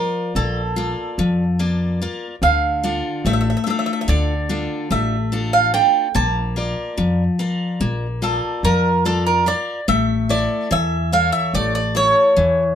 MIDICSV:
0, 0, Header, 1, 4, 480
1, 0, Start_track
1, 0, Tempo, 828729
1, 1403, Time_signature, 9, 3, 24, 8
1, 7385, End_track
2, 0, Start_track
2, 0, Title_t, "Bouzouki"
2, 0, Program_c, 0, 25
2, 0, Note_on_c, 0, 70, 80
2, 183, Note_off_c, 0, 70, 0
2, 209, Note_on_c, 0, 69, 77
2, 1142, Note_off_c, 0, 69, 0
2, 1408, Note_on_c, 0, 77, 80
2, 1889, Note_off_c, 0, 77, 0
2, 1891, Note_on_c, 0, 76, 79
2, 1923, Note_off_c, 0, 76, 0
2, 1930, Note_on_c, 0, 76, 57
2, 1966, Note_off_c, 0, 76, 0
2, 1973, Note_on_c, 0, 76, 57
2, 2013, Note_off_c, 0, 76, 0
2, 2027, Note_on_c, 0, 76, 49
2, 2060, Note_off_c, 0, 76, 0
2, 2067, Note_on_c, 0, 76, 55
2, 2100, Note_off_c, 0, 76, 0
2, 2107, Note_on_c, 0, 76, 47
2, 2137, Note_off_c, 0, 76, 0
2, 2144, Note_on_c, 0, 76, 58
2, 2185, Note_off_c, 0, 76, 0
2, 2195, Note_on_c, 0, 76, 54
2, 2229, Note_off_c, 0, 76, 0
2, 2236, Note_on_c, 0, 76, 61
2, 2269, Note_off_c, 0, 76, 0
2, 2276, Note_on_c, 0, 76, 54
2, 2317, Note_off_c, 0, 76, 0
2, 2323, Note_on_c, 0, 76, 62
2, 2364, Note_off_c, 0, 76, 0
2, 2369, Note_on_c, 0, 74, 85
2, 2846, Note_off_c, 0, 74, 0
2, 2848, Note_on_c, 0, 76, 88
2, 3182, Note_off_c, 0, 76, 0
2, 3204, Note_on_c, 0, 77, 84
2, 3315, Note_off_c, 0, 77, 0
2, 3323, Note_on_c, 0, 79, 88
2, 3562, Note_off_c, 0, 79, 0
2, 3565, Note_on_c, 0, 81, 85
2, 4769, Note_on_c, 0, 69, 78
2, 4990, Note_off_c, 0, 69, 0
2, 5007, Note_on_c, 0, 70, 88
2, 5222, Note_off_c, 0, 81, 0
2, 5245, Note_off_c, 0, 70, 0
2, 5248, Note_on_c, 0, 69, 82
2, 5358, Note_off_c, 0, 69, 0
2, 5366, Note_on_c, 0, 70, 79
2, 5477, Note_off_c, 0, 70, 0
2, 5489, Note_on_c, 0, 74, 86
2, 5710, Note_off_c, 0, 74, 0
2, 5726, Note_on_c, 0, 76, 90
2, 5949, Note_off_c, 0, 76, 0
2, 5968, Note_on_c, 0, 74, 86
2, 6190, Note_off_c, 0, 74, 0
2, 6211, Note_on_c, 0, 76, 96
2, 6432, Note_off_c, 0, 76, 0
2, 6448, Note_on_c, 0, 77, 97
2, 6557, Note_off_c, 0, 77, 0
2, 6559, Note_on_c, 0, 76, 89
2, 6686, Note_off_c, 0, 76, 0
2, 6690, Note_on_c, 0, 74, 90
2, 6800, Note_off_c, 0, 74, 0
2, 6806, Note_on_c, 0, 74, 82
2, 6917, Note_off_c, 0, 74, 0
2, 6931, Note_on_c, 0, 73, 91
2, 7385, Note_off_c, 0, 73, 0
2, 7385, End_track
3, 0, Start_track
3, 0, Title_t, "Steel-string acoustic guitar"
3, 0, Program_c, 1, 25
3, 0, Note_on_c, 1, 53, 65
3, 0, Note_on_c, 1, 65, 47
3, 0, Note_on_c, 1, 74, 54
3, 193, Note_off_c, 1, 53, 0
3, 210, Note_on_c, 1, 58, 63
3, 348, Note_off_c, 1, 65, 0
3, 352, Note_off_c, 1, 74, 0
3, 442, Note_on_c, 1, 65, 49
3, 451, Note_on_c, 1, 74, 54
3, 672, Note_off_c, 1, 58, 0
3, 688, Note_on_c, 1, 53, 68
3, 826, Note_off_c, 1, 65, 0
3, 831, Note_off_c, 1, 74, 0
3, 923, Note_on_c, 1, 58, 42
3, 925, Note_on_c, 1, 65, 40
3, 927, Note_on_c, 1, 74, 47
3, 1151, Note_off_c, 1, 53, 0
3, 1161, Note_off_c, 1, 65, 0
3, 1166, Note_off_c, 1, 74, 0
3, 1167, Note_on_c, 1, 65, 46
3, 1171, Note_on_c, 1, 70, 39
3, 1173, Note_on_c, 1, 74, 50
3, 1307, Note_off_c, 1, 58, 0
3, 1358, Note_off_c, 1, 65, 0
3, 1359, Note_off_c, 1, 70, 0
3, 1361, Note_off_c, 1, 74, 0
3, 1405, Note_on_c, 1, 50, 66
3, 1642, Note_on_c, 1, 62, 49
3, 1645, Note_on_c, 1, 65, 50
3, 1648, Note_on_c, 1, 69, 47
3, 1870, Note_off_c, 1, 50, 0
3, 1885, Note_on_c, 1, 57, 62
3, 2026, Note_off_c, 1, 62, 0
3, 2029, Note_off_c, 1, 65, 0
3, 2029, Note_off_c, 1, 69, 0
3, 2123, Note_on_c, 1, 62, 48
3, 2125, Note_on_c, 1, 65, 45
3, 2129, Note_on_c, 1, 69, 53
3, 2350, Note_off_c, 1, 57, 0
3, 2362, Note_on_c, 1, 50, 65
3, 2507, Note_off_c, 1, 62, 0
3, 2508, Note_off_c, 1, 65, 0
3, 2510, Note_off_c, 1, 69, 0
3, 2603, Note_on_c, 1, 62, 50
3, 2606, Note_on_c, 1, 65, 48
3, 2609, Note_on_c, 1, 69, 46
3, 2828, Note_off_c, 1, 50, 0
3, 2841, Note_on_c, 1, 57, 62
3, 2987, Note_off_c, 1, 62, 0
3, 2989, Note_off_c, 1, 65, 0
3, 2990, Note_off_c, 1, 69, 0
3, 3081, Note_on_c, 1, 62, 46
3, 3085, Note_on_c, 1, 65, 41
3, 3089, Note_on_c, 1, 69, 53
3, 3308, Note_off_c, 1, 57, 0
3, 3316, Note_off_c, 1, 65, 0
3, 3317, Note_off_c, 1, 62, 0
3, 3320, Note_off_c, 1, 69, 0
3, 3323, Note_on_c, 1, 62, 49
3, 3325, Note_on_c, 1, 65, 41
3, 3327, Note_on_c, 1, 69, 51
3, 3515, Note_off_c, 1, 65, 0
3, 3516, Note_off_c, 1, 62, 0
3, 3517, Note_off_c, 1, 69, 0
3, 3559, Note_on_c, 1, 58, 63
3, 3800, Note_on_c, 1, 65, 49
3, 3804, Note_on_c, 1, 70, 40
3, 3808, Note_on_c, 1, 74, 46
3, 4027, Note_off_c, 1, 58, 0
3, 4040, Note_on_c, 1, 53, 59
3, 4187, Note_off_c, 1, 65, 0
3, 4187, Note_off_c, 1, 70, 0
3, 4187, Note_off_c, 1, 74, 0
3, 4281, Note_on_c, 1, 65, 49
3, 4285, Note_on_c, 1, 70, 40
3, 4289, Note_on_c, 1, 74, 43
3, 4507, Note_off_c, 1, 53, 0
3, 4521, Note_on_c, 1, 58, 59
3, 4666, Note_off_c, 1, 65, 0
3, 4669, Note_off_c, 1, 70, 0
3, 4669, Note_off_c, 1, 74, 0
3, 4761, Note_on_c, 1, 65, 47
3, 4764, Note_on_c, 1, 74, 55
3, 4988, Note_off_c, 1, 58, 0
3, 5008, Note_on_c, 1, 53, 68
3, 5146, Note_off_c, 1, 65, 0
3, 5148, Note_off_c, 1, 74, 0
3, 5244, Note_on_c, 1, 65, 50
3, 5246, Note_on_c, 1, 70, 39
3, 5247, Note_on_c, 1, 74, 52
3, 5472, Note_off_c, 1, 53, 0
3, 5475, Note_off_c, 1, 65, 0
3, 5475, Note_off_c, 1, 70, 0
3, 5477, Note_off_c, 1, 74, 0
3, 5481, Note_on_c, 1, 65, 46
3, 5484, Note_on_c, 1, 74, 52
3, 5485, Note_on_c, 1, 70, 36
3, 5675, Note_off_c, 1, 65, 0
3, 5675, Note_off_c, 1, 70, 0
3, 5676, Note_off_c, 1, 74, 0
3, 5722, Note_on_c, 1, 57, 62
3, 5962, Note_on_c, 1, 64, 47
3, 5966, Note_on_c, 1, 76, 51
3, 5967, Note_on_c, 1, 69, 38
3, 6190, Note_off_c, 1, 57, 0
3, 6201, Note_on_c, 1, 52, 62
3, 6348, Note_off_c, 1, 64, 0
3, 6349, Note_off_c, 1, 69, 0
3, 6350, Note_off_c, 1, 76, 0
3, 6443, Note_on_c, 1, 64, 44
3, 6446, Note_on_c, 1, 69, 41
3, 6449, Note_on_c, 1, 73, 44
3, 6669, Note_off_c, 1, 52, 0
3, 6686, Note_on_c, 1, 57, 59
3, 6829, Note_off_c, 1, 64, 0
3, 6830, Note_off_c, 1, 73, 0
3, 6831, Note_off_c, 1, 69, 0
3, 6920, Note_on_c, 1, 64, 46
3, 6924, Note_on_c, 1, 69, 36
3, 6928, Note_on_c, 1, 73, 53
3, 7152, Note_off_c, 1, 57, 0
3, 7162, Note_on_c, 1, 52, 64
3, 7308, Note_off_c, 1, 64, 0
3, 7308, Note_off_c, 1, 69, 0
3, 7311, Note_off_c, 1, 73, 0
3, 7385, Note_off_c, 1, 52, 0
3, 7385, End_track
4, 0, Start_track
4, 0, Title_t, "Upright bass"
4, 0, Program_c, 2, 32
4, 204, Note_on_c, 2, 34, 87
4, 539, Note_off_c, 2, 34, 0
4, 684, Note_on_c, 2, 41, 84
4, 1187, Note_off_c, 2, 41, 0
4, 1400, Note_on_c, 2, 38, 87
4, 1737, Note_off_c, 2, 38, 0
4, 1881, Note_on_c, 2, 33, 86
4, 2050, Note_off_c, 2, 33, 0
4, 2362, Note_on_c, 2, 38, 82
4, 2698, Note_off_c, 2, 38, 0
4, 2842, Note_on_c, 2, 33, 85
4, 3346, Note_off_c, 2, 33, 0
4, 3561, Note_on_c, 2, 34, 86
4, 3898, Note_off_c, 2, 34, 0
4, 4042, Note_on_c, 2, 41, 81
4, 4210, Note_off_c, 2, 41, 0
4, 4520, Note_on_c, 2, 34, 84
4, 4858, Note_off_c, 2, 34, 0
4, 4999, Note_on_c, 2, 41, 80
4, 5505, Note_off_c, 2, 41, 0
4, 5723, Note_on_c, 2, 33, 78
4, 6060, Note_off_c, 2, 33, 0
4, 6205, Note_on_c, 2, 40, 78
4, 6541, Note_off_c, 2, 40, 0
4, 6681, Note_on_c, 2, 33, 77
4, 7019, Note_off_c, 2, 33, 0
4, 7166, Note_on_c, 2, 40, 78
4, 7385, Note_off_c, 2, 40, 0
4, 7385, End_track
0, 0, End_of_file